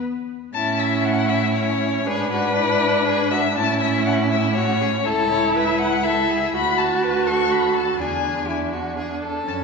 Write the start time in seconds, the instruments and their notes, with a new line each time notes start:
0.54 cello A2, viola C#4, violin E4 A5
0.79 violin E5
1.05 violin F#5
1.29 violin E5
1.55 viola C#4, violin C#5
2.05 cello G#2, viola D4, violin G#4 B4
2.32 violin F#4
2.58 violin E4
3.07 violin G#4
3.31 violin F#4 E5
3.56 cello A2, viola C#4, violin E4 A5
3.80 violin E5
4.06 violin F#5
4.31 violin E5
4.55 viola C#4, violin F#4 C#5
4.81 violin G#4
5.05 cello C#2, viola E4, violin A4
5.31 violin C#5
5.55 violin B4 E5
5.79 violin F#5
6.03 viola E4, violin A4 E5
6.31 violin G#4
6.54 cello D2, viola F#4, violin F#4 B5
6.78 violin A5
7.04 violin B4
7.27 violin A4 C#6
7.52 violin B5
7.75 violin A5
7.99 cello E2, viola D4, violin G#4 G#5
8.49 viola D4, violin E4 G#5
8.73 violin F#4
8.98 violin G#4
9.23 violin A4
9.48 cello F#2, viola C#4, violin A5